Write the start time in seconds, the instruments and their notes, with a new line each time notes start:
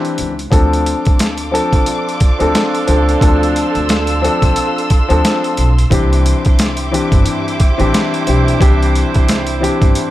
Already playing: grand piano E3 C4 D4 G4, horn section G3 E4 C5
0.05 closed hi-hat
0.18 upright bass C#2, closed hi-hat
0.39 closed hi-hat
0.50 upright bass D2, grand piano F3 C4 D4 A4, string section A4 F5 C6 D6, kick, closed hi-hat
0.73 closed hi-hat
0.86 closed hi-hat
1.05 upright bass D2, kick, closed hi-hat
1.19 snare, closed hi-hat
1.38 closed hi-hat
1.51 grand piano F3 C4 D4 A4, closed hi-hat
1.73 upright bass C2, kick, closed hi-hat
1.86 horn section F3 D4 A4, closed hi-hat
2.09 closed hi-hat
2.20 kick, closed hi-hat
2.39 upright bass D2, grand piano F3 C4 D4 A4, closed hi-hat
2.55 snare, closed hi-hat
2.75 closed hi-hat
2.87 upright bass C#2, grand piano F3 C4 D4 A4, closed hi-hat
3.09 closed hi-hat
3.20 upright bass D2, grand piano F3 C4 D4 A4, string section E6, kick, closed hi-hat
3.43 closed hi-hat
3.56 closed hi-hat
3.75 upright bass D2, closed hi-hat
3.89 snare, closed hi-hat
4.07 closed hi-hat
4.22 grand piano F3 C4 D4 A4, closed hi-hat
4.42 upright bass C2, kick, closed hi-hat
4.56 closed hi-hat
4.78 closed hi-hat
4.90 kick, closed hi-hat
5.08 upright bass D2, grand piano F3 C4 D4 A4, closed hi-hat
5.25 snare, closed hi-hat
5.44 closed hi-hat
5.57 upright bass B1, closed hi-hat
5.78 closed hi-hat
5.90 upright bass C2, grand piano E3 C4 D4 G4, string section G4 E5 D6, kick, closed hi-hat
6.13 closed hi-hat
6.26 closed hi-hat
6.45 upright bass C2, kick, closed hi-hat
6.59 snare, closed hi-hat
6.77 closed hi-hat
6.91 grand piano E3 C4 D4 G4, closed hi-hat
7.12 upright bass G1, kick, closed hi-hat
7.26 horn section G3 E4 C5, closed hi-hat
7.48 closed hi-hat
7.60 kick, closed hi-hat
7.78 upright bass A1, grand piano E3 C4 D4 G4, closed hi-hat
7.94 snare, closed hi-hat
8.14 closed hi-hat
8.26 upright bass B1, grand piano E3 C4 D4 G4, closed hi-hat
8.48 closed hi-hat
8.59 upright bass C2, grand piano E3 C4 D4 G4, kick, closed hi-hat
8.83 closed hi-hat
8.95 closed hi-hat
9.14 upright bass C2, kick, closed hi-hat
9.28 snare, closed hi-hat
9.47 closed hi-hat
9.61 grand piano E3 C4 D4 G4, closed hi-hat
9.82 upright bass G1, kick, closed hi-hat
9.95 closed hi-hat